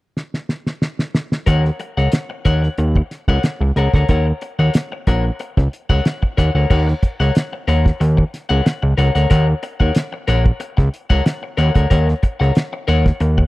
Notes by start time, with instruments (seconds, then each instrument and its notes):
0.17 snare
0.34 snare
0.49 snare
0.67 snare
0.82 snare
0.99 snare
1.15 snare
1.32 snare
1.46 analog synth bass D#2, clean electric guitar A#4 C#5 F#5, kick, closed hi-hat
1.64 muted clean electric guitar stroke, snare
1.80 muted clean electric guitar stroke, closed hi-hat
1.97 analog synth bass C#2, clean electric guitar A#4 C#5 F#5, snare
2.12 snare, closed hi-hat
2.30 muted clean electric guitar stroke
2.45 analog synth bass D#2, clean electric guitar A#4 C#5 F#5, kick, closed hi-hat
2.63 muted clean electric guitar stroke, snare
2.78 analog synth bass D#2, muted clean electric guitar stroke, closed hi-hat
2.96 muted clean electric guitar stroke, kick
3.11 snare, closed hi-hat
3.28 analog synth bass C#2, clean electric guitar A#4 C#5 F#5, kick
3.43 muted clean electric guitar stroke, snare, closed hi-hat
3.61 analog synth bass C#2, muted clean electric guitar stroke
3.76 analog synth bass C#2, clean electric guitar A#4 C#5 F#5, closed hi-hat
3.94 analog synth bass D2, clean electric guitar A#4 C#5 F#5, kick, snare
4.09 analog synth bass D#2, clean electric guitar A#4 C#5 F#5, kick, closed hi-hat
4.27 muted clean electric guitar stroke
4.41 muted clean electric guitar stroke, closed hi-hat
4.59 analog synth bass D#2, clean electric guitar A#4 C#5 F#5
4.74 snare, closed hi-hat
4.92 muted clean electric guitar stroke
5.07 analog synth bass A#1, clean electric guitar A#4 C#5 F#5, kick, snare, closed hi-hat
5.25 muted clean electric guitar stroke
5.39 muted clean electric guitar stroke, closed hi-hat
5.57 analog synth bass C#2, muted clean electric guitar stroke, kick, snare
5.73 closed hi-hat
5.90 analog synth bass C#2, clean electric guitar A#4 C#5 F#5, kick
6.05 muted clean electric guitar stroke, snare, closed hi-hat
6.22 muted clean electric guitar stroke, kick
6.37 analog synth bass D#2, clean electric guitar A#4 C#5 F#5, kick, snare, closed hi-hat
6.55 analog synth bass D2, clean electric guitar A#4 C#5 F#5
6.70 analog synth bass D#2, clean electric guitar A#4 C#5 F#5, kick, crash
6.88 muted clean electric guitar stroke, snare
7.03 muted clean electric guitar stroke, kick, closed hi-hat
7.20 analog synth bass C#2, clean electric guitar A#4 C#5 F#5, snare
7.35 snare, closed hi-hat
7.53 muted clean electric guitar stroke
7.68 analog synth bass D#2, clean electric guitar A#4 C#5 F#5, closed hi-hat
7.85 muted clean electric guitar stroke, kick, snare
8.00 analog synth bass D#2, muted clean electric guitar stroke, closed hi-hat
8.17 muted clean electric guitar stroke, kick
8.34 snare, closed hi-hat
8.49 analog synth bass C#2, clean electric guitar A#4 C#5 F#5
8.65 muted clean electric guitar stroke, snare, closed hi-hat
8.83 analog synth bass C#2, muted clean electric guitar stroke
8.97 analog synth bass C#2, clean electric guitar A#4 C#5 F#5, closed hi-hat
9.15 analog synth bass D2, clean electric guitar A#4 C#5 F#5, snare, closed hi-hat
9.30 analog synth bass D#2, clean electric guitar A#4 C#5 F#5, kick, closed hi-hat
9.48 muted clean electric guitar stroke
9.63 muted clean electric guitar stroke, closed hi-hat
9.80 analog synth bass D#2, clean electric guitar A#4 C#5 F#5, kick
9.95 snare, closed hi-hat
10.13 muted clean electric guitar stroke
10.28 analog synth bass A#1, clean electric guitar A#4 C#5 F#5, snare, closed hi-hat
10.45 muted clean electric guitar stroke, kick
10.60 muted clean electric guitar stroke, closed hi-hat
10.77 analog synth bass C#2, muted clean electric guitar stroke, kick, snare
10.94 closed hi-hat
11.10 analog synth bass C#2, clean electric guitar A#4 C#5 F#5, kick
11.25 muted clean electric guitar stroke, snare, closed hi-hat
11.43 muted clean electric guitar stroke
11.57 analog synth bass D#2, clean electric guitar A#4 C#5 F#5, closed hi-hat
11.74 analog synth bass D2, clean electric guitar A#4 C#5 F#5, kick, closed hi-hat
11.90 analog synth bass D#2, clean electric guitar A#4 C#5 F#5, kick, closed hi-hat
12.08 muted clean electric guitar stroke, snare
12.23 muted clean electric guitar stroke, kick, closed hi-hat
12.40 analog synth bass C#2, clean electric guitar A#4 C#5 F#5, snare
12.55 snare, closed hi-hat
12.73 muted clean electric guitar stroke
12.88 analog synth bass D#2, clean electric guitar A#4 C#5 F#5, closed hi-hat
13.05 muted clean electric guitar stroke, kick, snare
13.20 analog synth bass D#2, muted clean electric guitar stroke, closed hi-hat
13.38 muted clean electric guitar stroke, kick